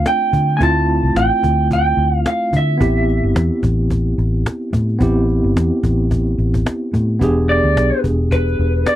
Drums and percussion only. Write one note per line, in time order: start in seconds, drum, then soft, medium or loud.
0.06 cajon slap loud
0.33 cajon bass medium
0.49 cajon slap soft
0.61 cajon bass loud
0.89 cajon slap soft
1.05 cajon slap soft
1.16 cajon slap loud
1.43 cajon bass medium
1.59 cajon slap soft
1.71 cajon bass medium
1.86 cajon slap soft
1.98 cajon slap soft
2.13 cajon slap soft
2.26 cajon slap loud
2.53 cajon bass medium
2.68 cajon slap soft
2.81 cajon bass loud
3.08 cajon slap soft
3.36 cajon slap loud
3.51 cajon slap soft
3.63 cajon bass medium
3.90 cajon bass medium
4.18 cajon slap soft
4.34 cajon slap soft
4.46 cajon slap loud
4.61 cajon slap soft
4.73 cajon bass medium
4.89 cajon slap soft
5.01 cajon bass loud
5.28 cajon slap soft
5.57 cajon slap loud
5.83 cajon bass medium
6.11 cajon bass medium
6.11 cajon slap soft
6.27 cajon slap soft
6.39 cajon slap soft
6.54 cajon bass medium
6.66 cajon slap loud
6.94 cajon bass medium
7.09 cajon slap soft
7.21 cajon bass loud
7.49 cajon slap soft
7.77 cajon slap loud
7.92 cajon slap soft
8.04 cajon bass medium
8.31 cajon bass medium
8.48 cajon slap soft
8.59 cajon slap soft
8.74 cajon slap soft
8.86 cajon slap loud